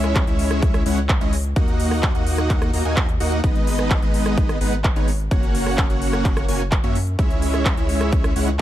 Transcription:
Already playing: C#2 G#3 C#4 E4 C#5 E5
0.04 cross-stick, closed hi-hat
0.15 kick, clap, closed hi-hat
0.27 C#2 G#3 C#4 E4 C#5 E5, closed hi-hat
0.39 open hi-hat
0.51 cross-stick, closed hi-hat
0.62 kick, closed hi-hat
0.74 cross-stick, closed hi-hat
0.86 C#2 G#3 C#4 E4 C#5 F#5, open hi-hat
1.09 kick, clap, closed hi-hat
1.21 C#2 G#3 C#4 E4 C#5 D#5, closed hi-hat
1.33 open hi-hat
1.45 closed hi-hat
1.56 D#2 A#3 D#4 F#4 D#5 F#5, kick, closed hi-hat
1.68 closed hi-hat
1.80 open hi-hat
1.91 cross-stick, open hi-hat
2.03 kick, clap, closed hi-hat
2.15 D#2 A#3 D#4 F#4 D#5 F#5, closed hi-hat
2.27 open hi-hat
2.38 cross-stick, closed hi-hat
2.50 kick, clap, closed hi-hat
2.62 cross-stick, closed hi-hat
2.73 D#2 A#3 D#4 F#4 D#5 A#5, open hi-hat
2.85 D#2 A#3 D#4 F#4 D#5 G#5
2.97 kick, clap, closed hi-hat
3.09 closed hi-hat
3.20 D#2 A#3 D#4 F#4 D#5 F#5, open hi-hat
3.32 closed hi-hat
3.44 G#1 G#3 B3 D#4 B4 D#5, kick, closed hi-hat
3.56 closed hi-hat
3.67 open hi-hat
3.79 cross-stick
3.90 kick, clap, closed hi-hat
4.02 G#1 G#3 B3 D#4 B4 D#5, closed hi-hat
4.14 open hi-hat
4.26 cross-stick, closed hi-hat
4.38 kick, closed hi-hat
4.49 cross-stick, closed hi-hat
4.61 G#1 G#3 B3 D#4 B4 F#5, open hi-hat
4.73 closed hi-hat
4.84 kick, clap, closed hi-hat
4.96 G#1 G#3 B3 D#4 B4 C#5, closed hi-hat
5.08 open hi-hat
5.20 closed hi-hat
5.31 F#1 A#3 C#4 F#4 C#5 F#5, kick, closed hi-hat
5.43 closed hi-hat
5.55 open hi-hat
5.66 cross-stick, open hi-hat
5.78 kick, clap, closed hi-hat
5.90 F#1 A#3 C#4 F#4 C#5 F#5, closed hi-hat
6.02 open hi-hat
6.13 cross-stick, closed hi-hat
6.25 kick, clap, closed hi-hat
6.37 cross-stick, closed hi-hat
6.48 F#1 A#3 C#4 F#4 C#5 G#5, open hi-hat
6.72 kick, clap, closed hi-hat
6.84 F#2 A#3 C#4 F#4 C#5 E5, closed hi-hat
6.95 open hi-hat
7.07 closed hi-hat
7.19 C#2 G#3 C#4 E4 C#5 E5, kick, closed hi-hat
7.31 closed hi-hat
7.42 open hi-hat
7.54 cross-stick, closed hi-hat
7.65 kick, clap, closed hi-hat
7.77 C#2 G#3 C#4 E4 C#5 E5, closed hi-hat
7.89 open hi-hat
8.01 cross-stick, closed hi-hat
8.12 kick, closed hi-hat
8.24 cross-stick, closed hi-hat
8.36 C#2 G#3 C#4 E4 C#5 F#5, open hi-hat

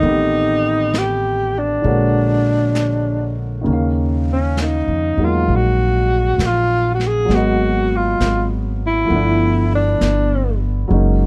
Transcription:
Already playing: D#3 D#4
0.01 A1 A3 B3, brush sweep
0.06 C4 G4
0.94 snare, hi-hat pedal
0.98 G4
1.59 D4
1.82 A#1 D3 G#3 A#3 C#5, brush sweep
1.87 F#4
2.75 snare, hi-hat pedal
3.61 C#3 D#3
3.66 D#2 A#3 C#4, brush sweep
3.73 F5
4.33 C#4
4.57 snare, hi-hat pedal
4.62 D#4
4.88 F2
5.18 E2 F#3 G#3 A#3 D#4
5.24 F4
5.48 A#1, brush sweep
5.56 F#4
6.38 A#1, snare, hi-hat pedal
6.46 F4
6.95 F#4
7.00 snare
7.07 G#4
7.25 G#1 F#3 G#3
7.30 A#3 B3, brush sweep, snare
7.35 F#4 D#5
7.96 F4
8.20 G#1, snare, hi-hat pedal
8.87 E4
9.05 F3 A3
9.10 G1 B3 D4, brush sweep
9.16 E4
9.75 D4
10.01 G1, snare, hi-hat pedal
10.88 F#1 F#3 G#3 A#3 C#4, brush sweep
10.93 D#4

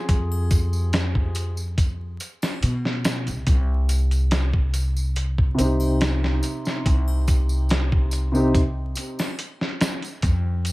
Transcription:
Already playing: F3 C4 G4 G#4
0.09 F2, kick, closed hi-hat, tambourine
0.32 triangle
0.51 kick, closed hi-hat, tambourine
0.73 tambourine
0.93 snare, closed hi-hat, tambourine
1.15 kick
1.35 closed hi-hat, tambourine
1.57 tambourine
1.78 kick, closed hi-hat, tambourine
2.20 closed hi-hat, tambourine
2.42 snare, tambourine, triangle
2.63 B2, closed hi-hat, tambourine
2.85 snare
3.04 snare, closed hi-hat, tambourine
3.27 C2, closed hi-hat, tambourine
3.47 C2, kick, closed hi-hat, tambourine
3.89 closed hi-hat, tambourine
4.11 closed hi-hat, tambourine
4.31 snare, closed hi-hat, tambourine
4.54 kick
4.74 closed hi-hat, tambourine
4.97 tambourine
5.16 closed hi-hat, tambourine
5.38 kick
5.55 C3 C4
5.59 C2 D#4, closed hi-hat, tambourine
5.64 G4
5.80 tambourine, triangle
6.01 snare, closed hi-hat, tambourine
6.24 snare
6.43 closed hi-hat, tambourine
6.65 snare, tambourine
6.86 C2, kick, closed hi-hat, tambourine
7.08 triangle
7.28 kick, closed hi-hat, tambourine
7.49 tambourine
7.69 snare, closed hi-hat, tambourine
7.92 kick
8.11 closed hi-hat, tambourine
8.32 C3 C4 D#4, tambourine
8.37 G4
8.55 kick, closed hi-hat, tambourine
8.95 closed hi-hat, tambourine
9.19 snare, tambourine, triangle
9.39 closed hi-hat, tambourine
9.61 snare
9.81 snare, closed hi-hat, tambourine
10.02 closed hi-hat, tambourine
10.22 F2, kick, closed hi-hat, tambourine
10.65 closed hi-hat, tambourine

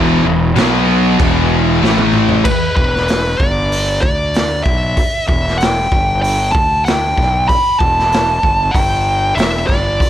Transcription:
Already playing: E1 E2 B2 E3
0.26 E1 E2 B2
0.56 B1 B2 F#3 B3, snare, crash
1.20 E1 E2 B2 E3, kick, crash
1.82 A1 A2 E3 A3, snare
1.98 high tom
2.13 mid tom
2.29 floor tom
2.44 B4, kick, crash
2.76 E1 B4, kick
2.96 snare
3.08 snare, open hi-hat
3.37 G1 D5, kick
3.72 open hi-hat
4.02 D2 D5, kick
4.34 snare, open hi-hat
4.64 B1 E5, kick
4.97 kick, open hi-hat
5.28 E1 E5, kick
5.47 snare
5.58 G5, open hi-hat
5.63 snare
5.92 G1, kick
6.22 G5, open hi-hat
6.52 D2 A5, kick
6.85 G5, snare, open hi-hat
7.18 B1, kick, snare
7.49 B5, kick, open hi-hat
7.79 E1 A5, kick
7.99 snare
8.12 snare, open hi-hat
8.43 G1, kick
8.71 G1 G5, kick, open hi-hat
9.35 E1 E5, open hi-hat
9.40 snare
9.67 G1 D5, kick
9.72 snare
10.00 kick, open hi-hat

